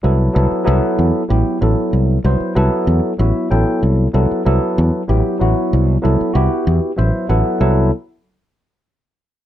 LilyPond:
<<
  \new Staff \with { instrumentName = "Tine electric piano" } { \time 6/8 \key c \lydian \tempo 4. = 63 << { r2. | r2 e''8 g''8 | r2. | r2 e''8 fis''8 |
r2. | } \\ { <fis b e' a'>8 <fis b e' a'>8 <fis b e' a'>4 <fis b e' g'>8 <fis b e' a'>8~ | <fis b e' a'>8 <fis b e' c''>8 <fis b e' a'>4 <fis b e' fis'>8 <fis b e' a'>8~ | <fis b e' a'>8 <fis b e' a'>8 <fis b e' a'>4 <fis b e' g'>8 <fis b e' fis'>8~ | <fis b e' fis'>8 <fis b e' a'>8 <b e' fis' g'>4 <fis b e' c''>8 <fis b e' a'>8 |
<fis b e' a'>8 r2 r8 | } >> }
  \new Staff \with { instrumentName = "Fretless electric bass" } { \clef bass \time 6/8 \key c \lydian c,8 c,16 r16 c,16 r16 e,16 r16 a,,16 r16 a,,16 r16 | c,8 c,16 r16 c,16 r16 e,16 r16 a,,16 r16 a,,16 r16 | c,8 c,16 r16 c,16 r16 e,16 r16 a,,16 r16 a,,16 r16 | c,8 c,16 r16 c,16 r16 e,16 r16 a,,16 r16 a,,16 r16 |
c,8 r2 r8 | }
>>